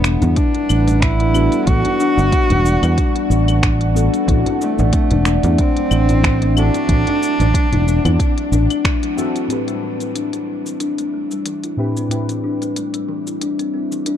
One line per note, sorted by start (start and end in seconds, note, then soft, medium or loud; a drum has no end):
0.00 0.16 E1 medium
0.00 4.29 G3 medium
0.00 0.37 B3 medium
0.00 1.30 B3 medium
0.00 1.30 D4 medium
0.00 11.83 D4 medium
0.00 1.04 E4 medium
0.00 1.31 F#4 medium
0.00 0.84 A4 medium
0.00 1.32 A4 loud
0.00 11.86 D5 medium
0.00 0.35 E5 medium
0.00 11.15 F#5 medium
0.04 0.21 B3 medium
0.04 finger snap medium
0.04 cabasa medium
0.09 4.28 B4 medium
0.22 0.34 E2 medium
0.22 0.36 E3 medium
0.22 closed hi-hat soft
0.22 djembe slap medium
0.22 djembe bass medium
0.22 cabasa soft
0.36 1.01 D4 medium
0.36 0.54 D4 loud
0.36 kick loud
0.36 closed hi-hat medium
0.36 cabasa soft
0.55 0.69 A3 medium
0.55 closed hi-hat soft
0.55 djembe tone soft
0.69 1.47 A1 medium
0.69 0.87 A3 medium
0.69 cabasa medium
0.69 claves medium
0.87 1.00 G3 medium
0.87 closed hi-hat soft
0.87 djembe tone medium
0.87 cabasa soft
1.00 1.19 E3 loud
1.00 1.68 E4 loud
1.00 finger snap medium
1.00 kick loud
1.00 closed hi-hat medium
1.00 cabasa soft
1.20 1.34 E4 medium
1.20 closed hi-hat soft
1.20 djembe slap soft
1.33 1.63 B3 medium
1.33 1.63 D4 medium
1.33 1.51 D4 medium
1.33 1.64 F#4 medium
1.33 1.64 A4 medium
1.33 cabasa medium
1.33 claves medium
1.52 1.66 B3 medium
1.52 closed hi-hat soft
1.52 djembe slap soft
1.52 cabasa soft
1.65 1.82 A1 loud
1.65 3.91 B3 medium
1.65 1.83 B3 medium
1.65 3.92 D4 medium
1.65 3.62 F#4 loud
1.65 3.92 F#4 medium
1.65 kick loud
1.65 closed hi-hat medium
1.65 cabasa soft
1.69 3.93 A4 medium
1.85 1.99 E3 medium
1.85 closed hi-hat soft
1.85 djembe tone medium
2.00 2.17 D4 loud
2.00 cabasa medium
2.17 2.30 G1 medium
2.17 2.31 A3 medium
2.17 djembe tone medium
2.17 cabasa soft
2.32 kick loud
2.32 closed hi-hat medium
2.32 cabasa soft
2.50 2.76 E1 medium
2.50 2.64 G3 medium
2.50 closed hi-hat soft
2.50 djembe bass medium
2.65 2.82 E3 loud
2.65 cabasa medium
2.82 2.95 E2 medium
2.82 2.97 E4 medium
2.82 closed hi-hat soft
2.82 djembe slap medium
2.82 djembe tone soft
2.82 cabasa soft
2.82 claves medium
2.98 3.14 D4 medium
2.98 kick loud
2.98 closed hi-hat medium
2.98 cabasa soft
3.15 3.29 B3 medium
3.15 closed hi-hat soft
3.30 4.08 A1 loud
3.30 3.47 B3 medium
3.30 cabasa medium
3.48 3.62 E3 medium
3.48 closed hi-hat soft
3.48 cabasa soft
3.48 claves medium
3.63 3.80 D4 loud
3.63 finger snap medium
3.63 kick loud
3.63 closed hi-hat medium
3.63 cabasa soft
3.81 3.94 A3 medium
3.81 closed hi-hat soft
3.94 4.13 A3 medium
3.94 4.24 B3 medium
3.94 4.24 D4 medium
3.94 4.25 F#4 medium
3.94 4.25 A4 medium
3.94 djembe tone soft
3.94 cabasa medium
4.13 4.27 G3 medium
4.13 closed hi-hat soft
4.13 cabasa soft
4.25 4.43 A1 loud
4.25 4.45 E3 loud
4.25 6.52 C4 medium
4.25 6.52 E4 medium
4.25 6.53 F#4 medium
4.25 kick loud
4.25 closed hi-hat medium
4.25 cabasa soft
4.29 9.51 A3 medium
4.29 6.54 A4 loud
4.46 4.60 E4 medium
4.46 closed hi-hat soft
4.46 djembe tone medium
4.61 5.62 A3 loud
4.61 4.77 D4 medium
4.61 cabasa medium
4.79 4.91 A1 medium
4.79 4.92 C4 medium
4.79 djembe tone medium
4.79 cabasa soft
4.93 5.10 C4 medium
4.93 kick medium
4.93 closed hi-hat medium
4.93 cabasa soft
5.11 5.37 E1 medium
5.11 5.25 E3 medium
5.11 closed hi-hat soft
5.11 djembe slap soft
5.11 djembe bass medium
5.25 5.43 D4 loud
5.25 finger snap medium
5.25 cabasa medium
5.43 5.56 E2 medium
5.43 5.58 A3 medium
5.43 closed hi-hat soft
5.43 djembe slap medium
5.43 djembe bass medium
5.43 cabasa soft
5.58 5.76 A3 medium
5.58 6.57 C4 loud
5.58 kick loud
5.58 closed hi-hat medium
5.58 cabasa soft
5.77 5.90 F#3 medium
5.77 closed hi-hat soft
5.77 djembe tone soft
5.91 6.69 A1 loud
5.91 6.08 E3 loud
5.91 cabasa medium
5.91 claves medium
6.09 6.23 E4 medium
6.09 closed hi-hat soft
6.09 djembe tone medium
6.09 cabasa soft
6.24 6.40 D4 medium
6.24 finger snap medium
6.24 kick loud
6.24 closed hi-hat medium
6.24 cabasa soft
6.42 6.55 C4 medium
6.42 closed hi-hat soft
6.42 djembe slap medium
6.55 6.85 C4 medium
6.55 6.73 C4 medium
6.55 8.82 D4 loud
6.55 6.85 E4 medium
6.55 6.86 F#4 medium
6.55 6.86 A4 medium
6.55 cabasa medium
6.55 claves medium
6.74 6.88 E3 medium
6.74 closed hi-hat soft
6.74 djembe slap soft
6.74 cabasa soft
6.87 7.04 A1 loud
6.87 9.13 C4 medium
6.87 7.06 D4 loud
6.87 9.14 E4 medium
6.87 9.14 F#4 medium
6.87 9.15 A4 medium
6.87 kick loud
6.87 closed hi-hat medium
6.87 cabasa soft
7.07 7.21 A3 medium
7.07 closed hi-hat soft
7.07 djembe tone medium
7.22 7.39 A3 medium
7.22 cabasa medium
7.40 7.52 A1 medium
7.40 7.53 F#3 medium
7.40 closed hi-hat soft
7.40 djembe tone medium
7.40 cabasa soft
7.54 7.71 E3 loud
7.54 kick loud
7.54 closed hi-hat medium
7.54 cabasa soft
7.72 7.98 E1 medium
7.72 7.86 E4 medium
7.72 closed hi-hat soft
7.72 djembe bass medium
7.87 8.03 D4 medium
7.87 cabasa medium
8.05 8.17 E2 medium
8.05 8.19 C4 medium
8.05 closed hi-hat soft
8.05 djembe slap medium
8.05 djembe tone soft
8.05 djembe bass medium
8.05 cabasa soft
8.05 claves medium
8.19 8.36 C4 medium
8.19 kick loud
8.19 closed hi-hat medium
8.19 cabasa soft
8.38 8.52 E3 medium
8.38 closed hi-hat soft
8.52 8.67 A1 medium
8.52 8.69 D4 loud
8.52 djembe tone medium
8.52 cabasa medium
8.70 8.84 A3 medium
8.70 closed hi-hat soft
8.70 cabasa soft
8.70 claves medium
8.85 9.02 A3 medium
8.85 finger snap medium
8.85 kick loud
8.85 closed hi-hat medium
8.85 cabasa soft
9.03 9.16 F#3 medium
9.03 closed hi-hat soft
9.16 9.34 E3 loud
9.16 9.46 C4 medium
9.16 9.46 E4 medium
9.16 9.46 F#4 medium
9.16 9.47 A4 medium
9.16 djembe tone soft
9.16 cabasa medium
9.36 9.49 E4 medium
9.36 closed hi-hat soft
9.36 cabasa soft
9.48 11.74 A2 medium
9.48 14.17 G3 medium
9.48 9.67 A3 medium
9.48 11.74 C4 medium
9.48 11.74 E4 medium
9.48 11.75 G4 medium
9.48 closed hi-hat medium
9.48 cabasa soft
9.52 11.76 B4 medium
9.67 9.81 G3 medium
9.67 14.17 C4 medium
9.67 closed hi-hat soft
9.67 cabasa soft
9.83 10.00 E3 medium
9.98 10.15 E4 medium
9.98 14.17 E5 medium
9.98 closed hi-hat soft
9.98 cabasa medium
10.07 14.17 E4 medium
10.15 10.31 D4 medium
10.15 closed hi-hat medium
10.15 cabasa soft
10.33 10.46 C4 medium
10.33 closed hi-hat soft
10.33 cabasa soft
10.48 10.64 C4 medium
10.53 14.17 A4 medium
10.66 10.80 E3 medium
10.66 cabasa medium
10.80 10.97 D4 medium
10.80 closed hi-hat medium
10.80 cabasa soft
10.98 11.12 A3 medium
10.98 closed hi-hat soft
10.98 cabasa soft
11.13 11.30 A3 medium
11.31 11.44 G3 medium
11.31 cabasa medium
11.46 11.63 E3 medium
11.46 closed hi-hat medium
11.46 cabasa soft
11.64 11.78 E4 medium
11.64 closed hi-hat soft
11.64 cabasa soft
11.77 12.06 A2 medium
11.77 12.07 C4 medium
11.77 11.95 D4 medium
11.77 12.07 E4 medium
11.77 12.07 G4 medium
11.77 12.08 B4 medium
11.97 12.10 C4 medium
11.97 cabasa medium
12.08 14.17 A2 medium
12.08 14.17 C4 medium
12.08 12.27 C4 medium
12.08 14.17 E4 medium
12.08 14.17 G4 medium
12.08 closed hi-hat medium
12.08 cabasa soft
12.13 14.17 B4 medium
12.29 12.43 E3 medium
12.29 closed hi-hat soft
12.29 cabasa soft
12.44 12.61 D4 medium
12.62 12.75 A3 medium
12.62 closed hi-hat soft
12.62 cabasa medium
12.76 12.93 A3 medium
12.76 closed hi-hat medium
12.76 cabasa medium
12.94 13.07 G3 medium
12.94 closed hi-hat soft
12.94 cabasa soft
13.09 13.26 E3 medium
13.27 13.41 E4 medium
13.27 cabasa medium
13.41 13.57 D4 medium
13.41 closed hi-hat medium
13.41 cabasa medium
13.59 13.73 C4 medium
13.59 closed hi-hat soft
13.59 cabasa soft
13.74 13.90 C4 medium
13.92 14.06 E3 medium
13.92 cabasa medium
14.06 14.17 D4 medium
14.06 closed hi-hat medium
14.06 cabasa soft